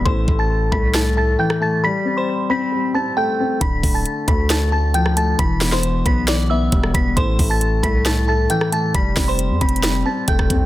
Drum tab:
HH |------------------------------------------------|------------------------------------------------|x-----o-----x-----x-----x-----------x-----x-----|x-----o-----x-----x-----x-----------x-----x-----|
SD |------------------------o--------------r--------|------------------------------------------------|------------------------o--------------r--------|------o--o--------------o--------------r--------|
BD |o-----o-----------o-----------------------------|------------------------------------------------|o-----o-----------o-----------------------------|o-----------------o-----------------o-----o-----|

HH |x-----o-----x-----x-----x-----------x-----x-----|x-----o-----x-----x-x-x-x-----------x-----x-----|
SD |------------------------o--------------r--------|------o-----------------o--------------r--------|
BD |o-----o-----------o-----------------------------|o-----o-----------o-----------------o--o--o-----|